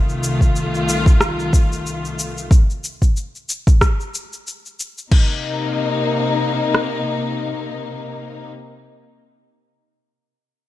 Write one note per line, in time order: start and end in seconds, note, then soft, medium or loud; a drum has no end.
0.00 2.48 C2 medium
0.00 2.48 D#3 medium
0.00 2.48 A3 medium
0.00 2.48 F4 medium
0.09 cabasa soft
0.23 cabasa medium
0.41 kick medium
0.41 cabasa soft
0.56 cabasa soft
0.75 cabasa soft
0.89 cabasa medium
1.06 kick loud
1.06 cabasa soft
1.21 cross-stick medium
1.21 cabasa soft
1.40 cabasa soft
1.53 kick loud
1.53 cabasa medium
1.72 cabasa soft
1.87 cabasa soft
2.05 cabasa soft
2.19 cabasa medium
2.38 cabasa soft
2.51 kick loud
2.51 cabasa soft
2.70 cabasa soft
2.84 cabasa medium
3.02 kick medium
3.02 cabasa soft
3.17 cabasa soft
3.35 cabasa soft
3.49 cabasa medium
3.67 kick loud
3.67 cabasa soft
3.81 kick loud
3.81 cross-stick medium
3.81 cabasa soft
4.00 cabasa soft
4.15 cabasa medium
4.33 cabasa soft
4.47 cabasa soft
4.66 cabasa soft
4.80 cabasa medium
4.98 cabasa soft
5.11 8.48 C3 medium
5.11 8.48 A#3 medium
5.11 8.48 D#4 medium
5.11 kick loud
5.11 crash medium
6.75 cross-stick medium